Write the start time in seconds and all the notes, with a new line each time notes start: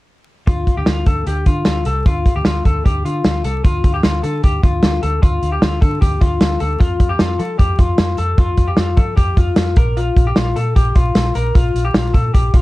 0.47 D2 F4, kick, closed hi-hat
0.67 kick, closed hi-hat
0.77 D2 G4
0.86 D2 F4, snare, closed hi-hat
1.06 D2 A4, kick, closed hi-hat
1.27 D2 G4, closed hi-hat
1.46 D3 F4, kick, closed hi-hat
1.65 D2, snare, closed hi-hat
1.85 C2 A4, closed hi-hat
2.06 D2 F4, kick, closed hi-hat
2.26 kick, closed hi-hat
2.36 D2 G4
2.45 D2 F4, snare, closed hi-hat
2.65 D2 A4, kick, closed hi-hat
2.85 D2 G4, kick, closed hi-hat
3.05 D3 F4, closed hi-hat
3.24 D2, snare, closed hi-hat
3.44 C2 A4, closed hi-hat
3.64 D2 F4, kick, closed hi-hat
3.84 D2, kick, closed hi-hat
3.94 G4
4.03 D2 F4, snare, closed hi-hat
4.23 D3 A4, closed hi-hat
4.44 D2 G4, kick, closed hi-hat
4.63 D2 F4, kick, closed hi-hat
4.83 D2, snare, closed hi-hat
5.03 D2 A4, closed hi-hat
5.22 D2 F4, kick, closed hi-hat
5.42 D2, closed hi-hat
5.52 G4
5.62 D2 F4, snare, closed hi-hat
5.81 D3 A4, kick, closed hi-hat
6.01 D2 G4, kick, closed hi-hat
6.21 D2 F4, kick, closed hi-hat
6.41 D2, snare, closed hi-hat
6.60 D2 A4, closed hi-hat
6.79 F2 F4, kick, closed hi-hat
7.00 F2, kick, closed hi-hat
7.09 G4
7.19 F2 F4, snare, closed hi-hat
7.39 F3 A4, closed hi-hat
7.59 F2 G4, kick, closed hi-hat
7.79 F2 F4, kick, closed hi-hat
7.98 F2, snare, closed hi-hat
8.18 F2 A4, closed hi-hat
8.38 F2 F4, kick, closed hi-hat
8.57 F2, kick, closed hi-hat
8.68 G4
8.77 F2 F4, snare, closed hi-hat
8.97 F3 A4, kick, closed hi-hat
9.17 F2 G4, kick, closed hi-hat
9.37 F2 F4, kick, closed hi-hat
9.56 F2, snare, closed hi-hat
9.76 A#1 A#4, kick, closed hi-hat
9.97 F4, closed hi-hat
10.16 A#1, kick, closed hi-hat
10.27 G4
10.36 A#1 F4, snare, closed hi-hat
10.56 A#2 A4, closed hi-hat
10.76 A#1 G4, kick, closed hi-hat
10.95 A#1 F4, kick, closed hi-hat
11.15 A#1, snare, closed hi-hat
11.35 A#1 A#4, closed hi-hat
11.55 A#1 F4, kick, closed hi-hat
11.74 A#1, closed hi-hat
11.85 G4
11.94 A#1 F4, snare, closed hi-hat
12.14 A#2 A4, kick, closed hi-hat
12.34 A#1 G4, kick, closed hi-hat
12.54 A#1 F4, kick, closed hi-hat